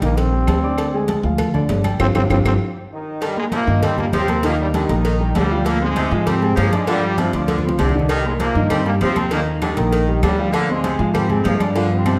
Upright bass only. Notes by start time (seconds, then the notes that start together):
0.02 A#1
0.47 D2
1.23 D2
1.69 G1
2.00 G1
2.15 G1
2.30 G1
2.45 G1
3.67 G2
4.13 D#2
4.89 A#1
5.35 D2
6.11 G#2
6.57 G2
7.33 D2
7.79 C2
8.55 G2
9.01 D#2
9.77 A#1
10.22 D2
10.99 G#2
11.45 G2